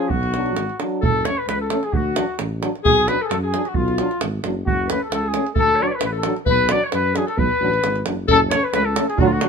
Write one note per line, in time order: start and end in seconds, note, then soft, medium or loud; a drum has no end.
0.00 0.12 G#4 medium
0.08 0.57 B1 medium
0.08 0.78 F#4 medium
0.08 0.79 F#4 loud
0.08 davul low medium
0.23 davul high soft
0.33 0.56 F#3 medium
0.33 0.55 D4 medium
0.33 davul high medium
0.46 davul high soft
0.55 0.68 G#1 medium
0.55 davul high medium
0.70 davul high soft
0.80 1.02 F#3 medium
0.80 1.02 D4 medium
0.80 davul high medium
1.01 1.27 F#1 medium
1.01 1.27 A4 medium
1.01 1.28 A4 loud
1.01 davul low medium
1.25 1.34 A3 medium
1.25 1.34 C#4 medium
1.25 1.39 C#5 medium
1.25 1.40 C#5 loud
1.25 davul high medium
1.38 1.48 B4 medium
1.38 1.47 B4 medium
1.47 1.72 C#2 medium
1.47 1.59 B4 medium
1.47 1.60 B4 medium
1.47 davul high medium
1.61 1.86 A4 medium
1.61 1.87 A4 medium
1.70 1.80 A3 medium
1.70 1.80 C#4 medium
1.70 davul high medium
1.83 1.95 G#4 medium
1.83 1.98 G#4 medium
1.83 davul high soft
1.92 2.18 D2 loud
1.92 2.39 F#4 medium
1.92 davul low medium
1.96 2.40 F#4 medium
2.16 2.25 F#3 medium
2.16 2.25 D4 medium
2.16 davul high medium
2.39 2.64 A1 medium
2.39 davul high medium
2.61 2.70 F#3 medium
2.61 2.71 D4 medium
2.61 davul high medium
2.75 davul high soft
2.84 3.10 B1 medium
2.84 3.10 G#4 loud
2.84 davul low medium
3.08 3.17 F#3 medium
3.08 3.17 D4 medium
3.08 3.24 B4 loud
3.08 3.22 B4 medium
3.08 davul high medium
3.21 3.29 G#4 medium
3.21 3.24 A4 medium
3.21 3.26 A4 medium
3.21 3.28 A4 medium
3.28 3.55 F#2 medium
3.28 3.31 A4 medium
3.28 3.35 A4 medium
3.28 davul high medium
3.32 3.37 A4 medium
3.43 3.67 G#4 medium
3.43 3.70 G#4 medium
3.54 3.62 F#3 medium
3.54 3.63 D4 medium
3.54 davul high medium
3.65 3.77 F#4 medium
3.65 3.79 F#4 medium
3.65 davul high soft
3.74 4.01 B1 medium
3.74 4.21 F4 medium
3.74 4.22 F4 medium
3.74 davul low medium
3.88 davul high soft
3.98 4.08 F#3 medium
3.98 4.09 D4 medium
3.98 davul high medium
4.11 davul high soft
4.21 4.41 G#1 medium
4.21 davul high medium
4.44 4.64 F#1 medium
4.44 4.54 F#3 medium
4.44 4.54 D4 medium
4.44 davul high medium
4.66 4.91 F#1 medium
4.66 4.89 F#4 medium
4.66 4.93 F#4 loud
4.66 davul low medium
4.88 5.00 A3 medium
4.88 4.99 C#4 medium
4.88 5.00 B4 medium
4.88 5.02 B4 medium
4.88 davul high medium
5.00 5.09 A4 medium
5.00 5.12 A4 medium
5.09 5.36 C#2 medium
5.09 5.23 A4 medium
5.09 davul high medium
5.14 5.30 A4 medium
5.21 5.45 G#4 medium
5.28 5.49 G#4 medium
5.34 5.43 A3 medium
5.34 5.44 C#4 medium
5.34 davul high medium
5.47 davul high soft
5.55 5.81 D2 medium
5.55 5.77 A4 loud
5.55 davul low medium
5.60 5.84 A4 loud
5.76 5.80 C#5 medium
5.76 5.84 D5 medium
5.81 5.90 F#3 medium
5.81 5.90 D4 medium
5.81 5.89 C#5 medium
5.87 5.98 B4 medium
5.87 5.97 C#5 medium
5.87 5.92 D5 medium
5.95 6.04 B4 medium
5.95 6.05 B4 medium
6.01 6.26 A1 medium
6.01 davul high medium
6.06 6.10 B4 medium
6.12 6.34 A4 medium
6.18 6.37 A4 medium
6.23 6.34 F#3 medium
6.23 6.34 D4 medium
6.23 davul high medium
6.36 davul high soft
6.46 6.72 B1 medium
6.46 6.71 B4 loud
6.46 davul low medium
6.51 6.74 B4 loud
6.69 6.81 F#3 medium
6.69 6.79 D4 medium
6.69 6.82 D5 medium
6.69 6.83 D5 loud
6.69 davul high medium
6.84 6.88 C#5 medium
6.84 6.89 C#5 medium
6.91 7.18 F#2 medium
6.91 7.16 B4 medium
6.91 7.19 B4 loud
6.91 davul high medium
7.15 7.25 F#3 medium
7.15 7.24 D4 medium
7.15 7.26 G#4 medium
7.15 7.28 G#4 medium
7.15 davul high medium
7.26 7.38 A4 medium
7.26 7.41 A4 medium
7.26 davul high soft
7.37 7.50 B1 loud
7.37 8.05 B4 loud
7.37 8.06 B4 loud
7.37 davul low medium
7.60 7.80 A1 medium
7.60 7.70 F#3 medium
7.60 7.70 D4 medium
7.74 davul high soft
7.83 8.03 G#1 medium
7.83 davul high medium
7.96 davul high soft
8.06 8.26 F#1 medium
8.06 8.15 F#3 medium
8.06 8.15 D4 medium
8.06 davul high medium
8.28 8.53 F#1 medium
8.28 8.38 A3 medium
8.28 8.37 C#4 medium
8.28 8.38 A4 loud
8.28 8.40 A4 loud
8.28 davul low medium
8.49 8.60 A3 medium
8.49 8.61 C#4 medium
8.49 8.64 C#5 medium
8.49 8.66 C#5 loud
8.49 davul high medium
8.62 8.65 B4 medium
8.62 8.67 B4 medium
8.68 8.72 B4 medium
8.68 8.73 B4 medium
8.73 8.98 C#2 medium
8.73 8.83 A3 medium
8.73 8.82 C#4 medium
8.73 8.84 B4 medium
8.73 8.87 B4 loud
8.73 davul high medium
8.83 9.06 A4 medium
8.83 9.07 A4 medium
8.96 9.07 A3 medium
8.96 9.05 C#4 medium
8.96 davul high medium
9.08 9.17 G#4 medium
9.08 davul high soft
9.17 9.43 D2 loud
9.17 9.28 F#3 medium
9.17 9.26 D4 medium
9.17 9.26 F#4 loud
9.17 9.29 F#4 loud
9.17 davul low loud
9.25 9.33 F4 medium
9.25 9.35 F4 medium
9.32 9.49 F#4 medium
9.40 9.49 F#3 medium
9.40 9.48 D4 medium
9.40 davul high medium